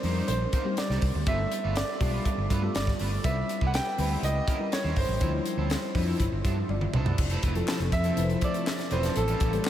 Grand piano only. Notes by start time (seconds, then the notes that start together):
Already playing: C5
0.28 C5
0.78 D5
1.28 E5
1.77 D5
2.76 D5
3.24 E5
3.67 F#5
3.75 G5
4.24 D#5
4.73 C#5
4.98 C5
7.93 E5
8.44 D5
8.92 C5
9.17 A4